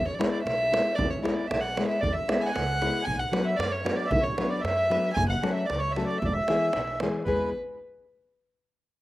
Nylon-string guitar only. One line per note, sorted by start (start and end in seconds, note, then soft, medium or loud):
0.19 0.40 G#3 medium
0.19 0.41 B3 medium
0.19 0.41 E4 medium
0.19 0.41 G#4 medium
0.19 0.41 B4 medium
0.71 0.93 G#3 medium
0.71 0.93 B3 medium
0.71 0.93 E4 medium
0.71 0.93 G#4 medium
0.71 0.94 B4 medium
1.22 1.44 G#3 medium
1.22 1.44 B3 medium
1.22 1.45 E4 medium
1.22 1.45 G#4 medium
1.22 1.45 B4 medium
1.77 1.98 G#3 medium
1.77 1.98 B3 medium
1.77 1.98 E4 medium
1.77 1.98 G#4 medium
1.77 1.99 B4 medium
2.28 2.50 G#3 medium
2.28 2.50 B3 medium
2.28 2.50 E4 medium
2.28 2.50 G#4 medium
2.28 2.51 B4 medium
2.81 3.02 G#3 medium
2.81 3.02 B3 medium
2.81 3.03 E4 medium
2.81 3.03 G#4 medium
2.81 3.03 B4 medium
3.32 3.54 F#3 medium
3.32 3.54 B3 medium
3.32 3.54 D4 medium
3.32 3.54 F#4 medium
3.32 3.54 B4 medium
3.85 4.06 F#3 medium
3.85 4.06 B3 medium
3.85 4.06 D4 medium
3.85 4.07 F#4 medium
3.85 4.07 B4 medium
4.38 4.59 F#3 medium
4.38 4.60 B3 medium
4.38 4.60 D4 medium
4.38 4.60 F#4 medium
4.38 4.60 B4 medium
4.90 5.11 F#3 medium
4.90 5.11 B3 medium
4.90 5.12 D4 medium
4.90 5.12 F#4 medium
4.90 5.12 B4 medium
5.42 5.64 F#3 medium
5.42 5.64 A3 medium
5.42 5.64 C#4 medium
5.42 5.64 F#4 medium
5.42 5.64 A4 medium
5.96 6.17 F#3 medium
5.96 6.17 A3 medium
5.96 6.17 C#4 medium
5.96 6.17 F#4 medium
5.96 6.18 A4 medium
6.48 6.69 E3 medium
6.48 6.70 G#3 medium
6.48 6.69 B3 medium
6.48 6.70 E4 medium
6.48 6.70 G#4 loud
7.01 7.22 E3 medium
7.01 7.22 G#3 medium
7.01 7.22 B3 medium
7.01 7.23 E4 medium
7.01 7.23 G#4 medium
7.27 7.52 G#3 medium
7.27 7.52 B3 medium
7.27 7.52 E4 medium
7.27 7.52 G#4 medium